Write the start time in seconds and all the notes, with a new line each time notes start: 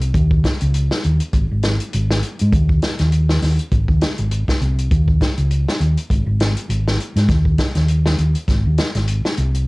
Already playing: C2
0.01 closed hi-hat
0.14 D#2, kick, closed hi-hat
0.31 kick
0.44 kick, snare, closed hi-hat
0.60 C#2, closed hi-hat
0.74 closed hi-hat
0.91 snare
1.04 D#2, closed hi-hat
1.20 closed hi-hat
1.33 G#1, kick, closed hi-hat
1.51 G#1
1.63 snare, closed hi-hat
1.80 closed hi-hat
1.93 G#1, closed hi-hat
2.11 snare
2.23 closed hi-hat
2.39 G#2, closed hi-hat
2.53 D#2, kick, closed hi-hat
2.69 kick
2.82 snare, closed hi-hat
2.99 D#2, snare, closed hi-hat
3.12 closed hi-hat
3.29 snare
3.42 D#2, snare, open hi-hat
3.59 closed hi-hat
3.72 G#1, kick, closed hi-hat
3.88 D#2, kick
4.01 snare, closed hi-hat
4.18 G#1, closed hi-hat
4.31 closed hi-hat
4.48 kick, snare
4.61 C2, closed hi-hat
4.78 closed hi-hat
4.91 D#2, kick, closed hi-hat
5.08 kick
5.21 kick, snare, closed hi-hat
5.37 C#2, closed hi-hat
5.51 closed hi-hat
5.68 snare
5.80 D#2, closed hi-hat
5.97 closed hi-hat
6.10 G#1, kick, closed hi-hat
6.26 G#1
6.40 snare, closed hi-hat
6.57 closed hi-hat
6.69 G#1, closed hi-hat
6.88 snare
7.00 closed hi-hat
7.16 G#2, snare, closed hi-hat
7.29 D#2, kick, snare, closed hi-hat
7.45 kick
7.58 kick, snare, closed hi-hat
7.75 D#2, snare, closed hi-hat
7.88 closed hi-hat
8.06 snare
8.18 D#2, closed hi-hat
8.35 closed hi-hat
8.48 G#1, kick, snare, closed hi-hat
8.66 D#2
8.78 muted fingered electric bass stroke, snare, closed hi-hat
8.94 G#1, snare, closed hi-hat
9.07 closed hi-hat
9.25 snare
9.37 C2, closed hi-hat
9.54 closed hi-hat